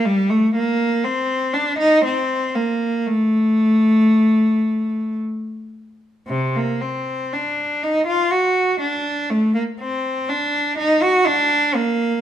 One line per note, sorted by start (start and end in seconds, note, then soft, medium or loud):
0.05 0.30 G3 medium
0.30 0.54 A3 medium
0.55 1.03 A#3 medium
1.04 1.54 C4 medium
1.53 1.78 D4 medium
1.78 2.03 D#4 medium
2.04 2.54 C4 medium
2.55 3.07 A#3 medium
3.07 5.17 A3 medium
6.27 6.55 C3 medium
6.55 6.82 A#3 medium
6.81 7.33 C4 medium
7.33 7.83 D4 medium
7.83 8.08 D#4 medium
8.06 8.31 F4 medium
8.31 8.81 F#4 medium
8.80 9.29 D4 medium
9.30 9.55 A3 medium
9.54 9.62 A#3 medium
9.80 10.28 C4 medium
10.29 10.78 D4 medium
10.78 11.02 D#4 medium
11.02 11.27 F#4 medium
11.26 11.76 D4 medium
11.75 12.21 A#3 medium